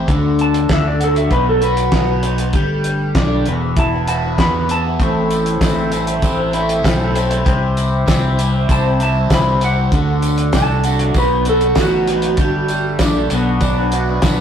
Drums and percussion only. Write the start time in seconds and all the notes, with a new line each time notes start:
0.08 kick, closed hi-hat
0.39 closed hi-hat
0.54 closed hi-hat
0.69 kick, snare, closed hi-hat
1.01 closed hi-hat
1.16 closed hi-hat
1.31 kick, closed hi-hat
1.62 closed hi-hat
1.77 closed hi-hat
1.92 kick, snare, closed hi-hat
2.23 closed hi-hat
2.38 closed hi-hat
2.53 kick, closed hi-hat
2.84 closed hi-hat
3.15 kick, snare, closed hi-hat
3.46 closed hi-hat
3.77 kick, closed hi-hat
4.07 closed hi-hat
4.38 kick, snare, closed hi-hat
4.69 closed hi-hat
5.00 kick, closed hi-hat
5.30 closed hi-hat, tambourine
5.46 closed hi-hat
5.61 kick, snare, closed hi-hat, tambourine
5.92 closed hi-hat, tambourine
6.07 closed hi-hat
6.22 kick, closed hi-hat, tambourine
6.53 closed hi-hat, tambourine
6.69 closed hi-hat
6.84 kick, snare, closed hi-hat, tambourine
7.16 closed hi-hat, tambourine
7.31 closed hi-hat
7.46 kick, closed hi-hat
7.77 closed hi-hat, tambourine
8.08 kick, snare, closed hi-hat, tambourine
8.38 closed hi-hat, tambourine
8.69 kick, closed hi-hat, tambourine
9.00 closed hi-hat, tambourine
9.30 kick, snare, closed hi-hat, tambourine
9.61 closed hi-hat, tambourine
9.92 kick, closed hi-hat
10.22 closed hi-hat, tambourine
10.38 closed hi-hat
10.53 kick, snare, closed hi-hat, tambourine
10.84 closed hi-hat, tambourine
10.99 closed hi-hat
11.14 kick, closed hi-hat, tambourine
11.45 closed hi-hat, tambourine
11.61 closed hi-hat
11.75 kick, snare, closed hi-hat, tambourine
12.08 snare, closed hi-hat
12.22 closed hi-hat
12.37 kick, closed hi-hat, tambourine
12.68 closed hi-hat, tambourine
12.99 kick, snare, closed hi-hat, tambourine
13.30 closed hi-hat, tambourine
13.61 kick, closed hi-hat, tambourine
13.92 closed hi-hat
14.22 kick, snare, closed hi-hat, tambourine